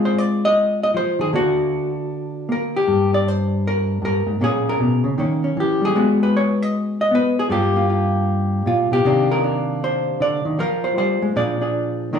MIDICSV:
0, 0, Header, 1, 2, 480
1, 0, Start_track
1, 0, Tempo, 385852
1, 1637, Time_signature, 4, 2, 24, 8
1, 15168, End_track
2, 0, Start_track
2, 0, Title_t, "Hollow-body jazz guitar"
2, 0, Program_c, 0, 26
2, 0, Note_on_c, 0, 56, 74
2, 0, Note_on_c, 0, 60, 52
2, 0, Note_on_c, 0, 65, 50
2, 0, Note_on_c, 0, 68, 95
2, 65, Note_on_c, 0, 72, 83
2, 229, Note_off_c, 0, 72, 0
2, 229, Note_on_c, 0, 74, 100
2, 521, Note_off_c, 0, 74, 0
2, 525, Note_off_c, 0, 68, 0
2, 560, Note_on_c, 0, 75, 108
2, 1013, Note_off_c, 0, 75, 0
2, 1038, Note_on_c, 0, 75, 93
2, 1125, Note_off_c, 0, 75, 0
2, 1166, Note_off_c, 0, 60, 0
2, 1171, Note_on_c, 0, 53, 61
2, 1203, Note_on_c, 0, 72, 96
2, 1472, Note_off_c, 0, 53, 0
2, 1472, Note_off_c, 0, 56, 0
2, 1480, Note_on_c, 0, 51, 57
2, 1504, Note_on_c, 0, 68, 93
2, 1645, Note_off_c, 0, 51, 0
2, 1653, Note_on_c, 0, 50, 69
2, 1657, Note_off_c, 0, 68, 0
2, 1660, Note_off_c, 0, 72, 0
2, 1662, Note_on_c, 0, 58, 53
2, 1674, Note_on_c, 0, 62, 52
2, 1681, Note_off_c, 0, 65, 0
2, 1686, Note_on_c, 0, 66, 96
2, 3090, Note_off_c, 0, 58, 0
2, 3095, Note_on_c, 0, 58, 60
2, 3097, Note_off_c, 0, 62, 0
2, 3134, Note_on_c, 0, 70, 87
2, 3440, Note_on_c, 0, 67, 93
2, 3546, Note_off_c, 0, 50, 0
2, 3576, Note_on_c, 0, 43, 78
2, 3584, Note_off_c, 0, 66, 0
2, 3587, Note_off_c, 0, 70, 0
2, 3894, Note_off_c, 0, 67, 0
2, 3911, Note_on_c, 0, 74, 83
2, 4082, Note_off_c, 0, 74, 0
2, 4082, Note_on_c, 0, 72, 99
2, 4120, Note_off_c, 0, 58, 0
2, 4571, Note_on_c, 0, 70, 94
2, 4984, Note_off_c, 0, 43, 0
2, 4999, Note_on_c, 0, 43, 57
2, 5021, Note_off_c, 0, 72, 0
2, 5023, Note_off_c, 0, 70, 0
2, 5037, Note_on_c, 0, 70, 93
2, 5302, Note_off_c, 0, 43, 0
2, 5307, Note_on_c, 0, 44, 61
2, 5478, Note_off_c, 0, 44, 0
2, 5483, Note_on_c, 0, 46, 73
2, 5493, Note_on_c, 0, 58, 48
2, 5499, Note_off_c, 0, 70, 0
2, 5500, Note_on_c, 0, 61, 50
2, 5521, Note_on_c, 0, 68, 97
2, 5839, Note_on_c, 0, 70, 89
2, 5962, Note_off_c, 0, 46, 0
2, 5969, Note_on_c, 0, 47, 63
2, 6269, Note_on_c, 0, 49, 64
2, 6272, Note_off_c, 0, 47, 0
2, 6289, Note_off_c, 0, 68, 0
2, 6429, Note_off_c, 0, 61, 0
2, 6438, Note_off_c, 0, 49, 0
2, 6443, Note_on_c, 0, 51, 75
2, 6448, Note_off_c, 0, 58, 0
2, 6454, Note_on_c, 0, 58, 49
2, 6460, Note_on_c, 0, 61, 49
2, 6752, Note_off_c, 0, 61, 0
2, 6767, Note_on_c, 0, 61, 46
2, 6921, Note_off_c, 0, 51, 0
2, 6926, Note_on_c, 0, 52, 59
2, 6945, Note_off_c, 0, 70, 0
2, 6969, Note_on_c, 0, 67, 78
2, 7227, Note_off_c, 0, 58, 0
2, 7231, Note_off_c, 0, 52, 0
2, 7232, Note_on_c, 0, 55, 58
2, 7278, Note_on_c, 0, 68, 92
2, 7388, Note_off_c, 0, 61, 0
2, 7401, Note_off_c, 0, 55, 0
2, 7408, Note_on_c, 0, 56, 75
2, 7418, Note_on_c, 0, 59, 50
2, 7424, Note_off_c, 0, 67, 0
2, 7426, Note_on_c, 0, 66, 52
2, 7732, Note_off_c, 0, 68, 0
2, 7749, Note_on_c, 0, 71, 83
2, 7919, Note_on_c, 0, 73, 86
2, 8242, Note_off_c, 0, 73, 0
2, 8242, Note_on_c, 0, 75, 93
2, 8379, Note_off_c, 0, 71, 0
2, 8694, Note_off_c, 0, 75, 0
2, 8721, Note_on_c, 0, 75, 96
2, 8832, Note_off_c, 0, 59, 0
2, 8847, Note_on_c, 0, 59, 58
2, 8894, Note_on_c, 0, 71, 90
2, 9174, Note_off_c, 0, 71, 0
2, 9198, Note_on_c, 0, 68, 93
2, 9302, Note_off_c, 0, 56, 0
2, 9302, Note_off_c, 0, 59, 0
2, 9310, Note_off_c, 0, 66, 0
2, 9322, Note_on_c, 0, 43, 73
2, 9331, Note_on_c, 0, 55, 52
2, 9343, Note_on_c, 0, 58, 48
2, 9344, Note_off_c, 0, 68, 0
2, 9345, Note_off_c, 0, 75, 0
2, 9349, Note_on_c, 0, 65, 52
2, 9355, Note_on_c, 0, 67, 93
2, 9641, Note_off_c, 0, 65, 0
2, 9648, Note_off_c, 0, 58, 0
2, 9653, Note_on_c, 0, 58, 43
2, 9665, Note_on_c, 0, 65, 45
2, 9811, Note_off_c, 0, 65, 0
2, 9826, Note_on_c, 0, 65, 47
2, 10759, Note_off_c, 0, 43, 0
2, 10771, Note_off_c, 0, 65, 0
2, 10771, Note_on_c, 0, 46, 64
2, 10789, Note_on_c, 0, 65, 80
2, 11071, Note_off_c, 0, 46, 0
2, 11082, Note_off_c, 0, 67, 0
2, 11085, Note_on_c, 0, 47, 58
2, 11109, Note_on_c, 0, 67, 93
2, 11246, Note_off_c, 0, 47, 0
2, 11252, Note_off_c, 0, 65, 0
2, 11256, Note_on_c, 0, 48, 74
2, 11265, Note_off_c, 0, 58, 0
2, 11265, Note_on_c, 0, 51, 53
2, 11270, Note_on_c, 0, 58, 53
2, 11280, Note_on_c, 0, 62, 52
2, 11566, Note_off_c, 0, 67, 0
2, 11587, Note_on_c, 0, 70, 82
2, 11727, Note_off_c, 0, 62, 0
2, 11742, Note_on_c, 0, 62, 46
2, 12217, Note_off_c, 0, 70, 0
2, 12240, Note_on_c, 0, 72, 91
2, 12689, Note_off_c, 0, 51, 0
2, 12694, Note_on_c, 0, 50, 62
2, 12697, Note_off_c, 0, 72, 0
2, 12712, Note_on_c, 0, 74, 92
2, 12992, Note_off_c, 0, 50, 0
2, 13002, Note_on_c, 0, 51, 62
2, 13143, Note_off_c, 0, 48, 0
2, 13164, Note_off_c, 0, 51, 0
2, 13167, Note_off_c, 0, 55, 0
2, 13167, Note_off_c, 0, 62, 0
2, 13172, Note_off_c, 0, 58, 0
2, 13172, Note_on_c, 0, 53, 78
2, 13173, Note_off_c, 0, 74, 0
2, 13177, Note_on_c, 0, 65, 54
2, 13189, Note_on_c, 0, 70, 98
2, 13486, Note_on_c, 0, 72, 73
2, 13642, Note_off_c, 0, 53, 0
2, 13646, Note_off_c, 0, 72, 0
2, 13650, Note_on_c, 0, 55, 62
2, 13661, Note_on_c, 0, 72, 90
2, 13950, Note_off_c, 0, 55, 0
2, 13959, Note_off_c, 0, 70, 0
2, 13961, Note_on_c, 0, 56, 66
2, 14104, Note_off_c, 0, 65, 0
2, 14123, Note_off_c, 0, 56, 0
2, 14127, Note_off_c, 0, 72, 0
2, 14129, Note_on_c, 0, 46, 70
2, 14135, Note_on_c, 0, 53, 49
2, 14141, Note_on_c, 0, 74, 85
2, 14146, Note_on_c, 0, 62, 48
2, 14155, Note_on_c, 0, 68, 49
2, 14433, Note_off_c, 0, 62, 0
2, 14442, Note_off_c, 0, 68, 0
2, 14448, Note_on_c, 0, 62, 44
2, 14457, Note_on_c, 0, 68, 46
2, 15060, Note_off_c, 0, 46, 0
2, 15066, Note_off_c, 0, 62, 0
2, 15070, Note_off_c, 0, 68, 0
2, 15084, Note_off_c, 0, 53, 0
2, 15086, Note_off_c, 0, 74, 0
2, 15087, Note_on_c, 0, 51, 72
2, 15095, Note_on_c, 0, 58, 49
2, 15106, Note_on_c, 0, 62, 53
2, 15111, Note_on_c, 0, 70, 49
2, 15168, Note_off_c, 0, 51, 0
2, 15168, Note_off_c, 0, 58, 0
2, 15168, Note_off_c, 0, 62, 0
2, 15168, Note_off_c, 0, 70, 0
2, 15168, End_track
0, 0, End_of_file